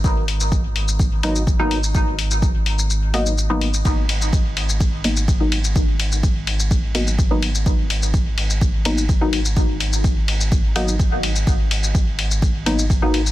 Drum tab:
RD |----------------|----------------|x-x-x-x-x-x-x-x-|x-x-x-x-x-x-x-x-|
HH |--o---o---o---o-|--o---o---o---o-|--o---o---o---o-|--o---o---o---o-|
SH |x--xx--xx--xx--x|x--xx--xx--xx--x|x--xx--xx--xx--x|x--xx--xx--xx--x|
BD |o---o---o---o---|o---o-----------|o---o---o---o---|o---o---o---o---|

RD |x-x-x-x-x-x-x-x-|x-x-x-x-x-x-x-x-|x-x-x-x-x-x-x-x-|
HH |--o---o---o---o-|--o---o---o---o-|--o---o---o---o-|
SH |x--xx--xx--xx--x|x--xx--xx--xx--x|x--xx--xx--xx--x|
BD |o---o---o---o---|o---o---o---o---|o---o---o---o---|